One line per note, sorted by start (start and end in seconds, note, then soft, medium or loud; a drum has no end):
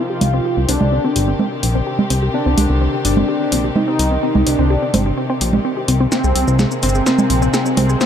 0.00 8.06 C3 medium
0.00 7.97 D#3 medium
0.00 6.08 C4 medium
0.00 0.59 F4 loud
0.00 6.08 G4 medium
0.10 0.18 G4 medium
0.21 0.40 C2 loud
0.21 0.30 C4 medium
0.21 open hi-hat loud
0.21 low conga medium
0.34 0.39 C4 loud
0.45 0.54 G4 medium
0.57 0.66 C2 loud
0.57 0.66 C4 medium
0.69 0.78 C2 medium
0.69 0.74 C4 loud
0.69 1.30 D4 loud
0.69 open hi-hat loud
0.81 0.99 C2 loud
0.81 0.89 G4 medium
0.81 low conga medium
0.92 1.01 C4 medium
1.04 1.09 C4 loud
1.16 1.35 G1 medium
1.16 1.25 G4 medium
1.16 open hi-hat loud
1.28 1.37 C4 medium
1.39 1.45 C4 loud
1.39 low conga medium
1.52 1.60 G4 medium
1.63 1.82 A#1 medium
1.63 1.72 C4 medium
1.63 open hi-hat loud
1.75 1.80 C4 loud
1.87 1.96 G4 medium
1.99 2.07 C4 medium
1.99 low conga medium
2.10 2.29 C2 loud
2.10 2.16 C4 loud
2.10 open hi-hat loud
2.23 2.31 G4 medium
2.34 2.43 C4 medium
2.34 2.96 D4 loud
2.46 2.55 C2 loud
2.46 2.51 C4 loud
2.58 2.67 C2 medium
2.58 2.67 G4 medium
2.58 open hi-hat loud
2.58 low conga medium
2.70 2.88 C2 loud
2.70 2.78 C4 medium
2.81 2.87 C4 loud
2.93 3.02 G4 medium
3.05 3.23 G1 medium
3.05 3.14 C4 medium
3.05 3.67 D4 loud
3.05 open hi-hat loud
3.17 3.22 C4 loud
3.17 low conga medium
3.29 3.38 G4 medium
3.41 3.49 C4 medium
3.52 3.71 A#1 medium
3.52 3.58 C4 loud
3.52 open hi-hat loud
3.64 3.73 G4 medium
3.76 3.85 C4 medium
3.76 4.48 D#4 loud
3.76 low conga medium
3.88 3.93 C4 loud
3.99 4.18 C2 loud
3.99 4.08 G4 medium
3.99 open hi-hat loud
4.11 4.20 C4 medium
4.23 4.28 C4 loud
4.35 4.44 C2 loud
4.35 4.44 G4 medium
4.35 low conga medium
4.46 4.56 C2 medium
4.46 4.56 C4 medium
4.46 5.08 D4 loud
4.46 open hi-hat loud
4.59 4.77 C2 loud
4.59 4.64 C4 loud
4.70 4.79 G4 medium
4.82 4.91 C4 medium
4.94 5.12 G1 medium
4.94 4.99 C4 loud
4.94 open hi-hat loud
4.94 low conga medium
5.06 5.14 G4 medium
5.17 5.26 C4 medium
5.30 5.35 C4 loud
5.41 5.60 A#1 medium
5.41 5.50 G4 medium
5.41 open hi-hat loud
5.53 5.62 C4 medium
5.53 low conga medium
5.65 5.70 C4 loud
5.77 5.85 G4 medium
5.88 6.07 C2 loud
5.88 5.97 C4 medium
5.88 open hi-hat loud
6.00 6.06 C4 loud
6.12 8.06 G#3 medium
6.12 8.06 A#3 medium
6.12 6.17 C4 medium
6.12 6.74 C4 loud
6.12 snare soft
6.12 riser medium
6.12 shaker medium
6.24 6.33 C2 medium
6.24 6.33 G#4 medium
6.24 shaker soft
6.35 6.45 C2 medium
6.35 6.45 C4 medium
6.35 open hi-hat loud
6.48 6.66 C2 loud
6.48 6.53 C4 loud
6.48 shaker soft
6.59 6.68 G#4 medium
6.59 snare soft
6.59 low conga medium
6.59 shaker medium
6.71 6.80 C4 medium
6.71 shaker soft
6.83 7.01 G1 medium
6.83 7.05 C4 medium
6.83 6.88 C4 medium
6.83 open hi-hat loud
6.83 shaker soft
6.89 shaker medium
6.95 7.03 G#4 medium
6.95 shaker soft
7.06 7.68 C4 loud
7.06 7.12 C4 medium
7.06 snare medium
7.06 shaker medium
7.19 7.27 G#4 medium
7.19 low conga medium
7.19 shaker soft
7.30 7.49 A#1 medium
7.30 7.39 C4 medium
7.30 open hi-hat loud
7.42 7.47 C4 medium
7.42 shaker soft
7.54 7.63 G#4 medium
7.54 snare medium
7.54 shaker medium
7.66 7.74 C4 medium
7.66 shaker soft
7.77 7.96 C2 loud
7.77 7.99 C4 medium
7.77 7.83 C4 medium
7.77 open hi-hat loud
7.77 low conga medium
7.77 shaker soft
7.89 7.98 G#4 medium
7.89 shaker soft
8.01 8.06 C4 loud
8.01 8.06 C4 medium
8.01 8.06 D4 medium
8.01 snare medium
8.01 shaker medium